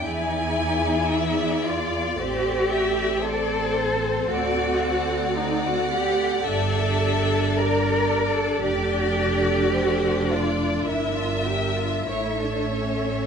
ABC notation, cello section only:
X:1
M:4/4
L:1/16
Q:1/4=55
K:Dm
V:1 name="Cello section"
E6 F2 G4 A4 | ^F4 _E F G2 A4 B3 A | G6 F2 E F G F E D ^C2 |]